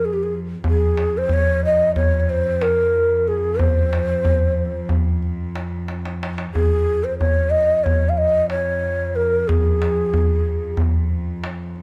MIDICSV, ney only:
0, 0, Header, 1, 2, 480
1, 0, Start_track
1, 0, Tempo, 652884
1, 482, Time_signature, 9, 3, 24, 8
1, 8692, End_track
2, 0, Start_track
2, 0, Title_t, "Ney"
2, 0, Program_c, 0, 77
2, 35, Note_on_c, 0, 68, 59
2, 97, Note_on_c, 0, 67, 61
2, 108, Note_off_c, 0, 68, 0
2, 170, Note_on_c, 0, 68, 60
2, 181, Note_off_c, 0, 67, 0
2, 239, Note_off_c, 0, 68, 0
2, 510, Note_on_c, 0, 68, 87
2, 864, Note_on_c, 0, 72, 89
2, 875, Note_off_c, 0, 68, 0
2, 980, Note_on_c, 0, 73, 94
2, 991, Note_off_c, 0, 72, 0
2, 1209, Note_off_c, 0, 73, 0
2, 1213, Note_on_c, 0, 75, 92
2, 1432, Note_off_c, 0, 75, 0
2, 1436, Note_on_c, 0, 73, 85
2, 1614, Note_off_c, 0, 73, 0
2, 1614, Note_on_c, 0, 73, 62
2, 1688, Note_on_c, 0, 72, 88
2, 1699, Note_off_c, 0, 73, 0
2, 1926, Note_on_c, 0, 70, 86
2, 1937, Note_off_c, 0, 72, 0
2, 2409, Note_on_c, 0, 68, 74
2, 2420, Note_off_c, 0, 70, 0
2, 2639, Note_on_c, 0, 72, 82
2, 2650, Note_off_c, 0, 68, 0
2, 3602, Note_off_c, 0, 72, 0
2, 4810, Note_on_c, 0, 68, 81
2, 5175, Note_on_c, 0, 72, 81
2, 5186, Note_off_c, 0, 68, 0
2, 5281, Note_off_c, 0, 72, 0
2, 5285, Note_on_c, 0, 73, 87
2, 5515, Note_on_c, 0, 75, 94
2, 5526, Note_off_c, 0, 73, 0
2, 5762, Note_on_c, 0, 73, 84
2, 5773, Note_off_c, 0, 75, 0
2, 5948, Note_on_c, 0, 77, 64
2, 5959, Note_off_c, 0, 73, 0
2, 6011, Note_on_c, 0, 75, 91
2, 6022, Note_off_c, 0, 77, 0
2, 6243, Note_off_c, 0, 75, 0
2, 6248, Note_on_c, 0, 73, 86
2, 6731, Note_on_c, 0, 70, 78
2, 6742, Note_off_c, 0, 73, 0
2, 6967, Note_on_c, 0, 68, 80
2, 6978, Note_off_c, 0, 70, 0
2, 7925, Note_off_c, 0, 68, 0
2, 8692, End_track
0, 0, End_of_file